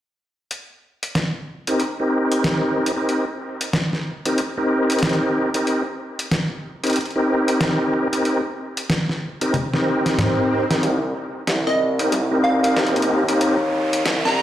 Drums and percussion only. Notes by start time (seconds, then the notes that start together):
0.51 closed hi-hat
1.03 closed hi-hat
1.15 snare, closed hi-hat
1.67 closed hi-hat
1.80 closed hi-hat
2.32 closed hi-hat
2.44 snare, closed hi-hat
2.86 closed hi-hat
3.09 closed hi-hat
3.61 closed hi-hat
3.73 snare, closed hi-hat
3.93 snare
4.25 closed hi-hat
4.38 closed hi-hat
4.90 closed hi-hat
4.92 closed hi-hat
4.99 closed hi-hat
5.03 snare, closed hi-hat
5.09 closed hi-hat
5.13 closed hi-hat
5.54 closed hi-hat
5.67 closed hi-hat
6.19 closed hi-hat
6.31 snare, closed hi-hat
6.84 closed hi-hat
6.87 closed hi-hat
6.90 closed hi-hat
6.93 closed hi-hat
6.96 closed hi-hat
7.01 closed hi-hat
7.05 closed hi-hat
7.11 closed hi-hat
7.48 closed hi-hat
7.61 snare, closed hi-hat
8.13 closed hi-hat
8.25 closed hi-hat
8.77 closed hi-hat
8.90 snare, closed hi-hat
9.09 snare
9.41 closed hi-hat
9.54 closed hi-hat, high tom
9.74 snare
10.06 snare, closed hi-hat
10.19 snare, closed hi-hat, mid tom
10.71 snare, closed hi-hat
10.83 closed hi-hat
11.47 snare, closed hi-hat
11.67 snare
11.99 closed hi-hat
12.12 closed hi-hat
12.64 closed hi-hat
12.77 snare, closed hi-hat
12.87 closed hi-hat
12.96 closed hi-hat
13.02 closed hi-hat
13.28 closed hi-hat
13.41 closed hi-hat
13.93 closed hi-hat
14.06 snare, closed hi-hat
14.25 snare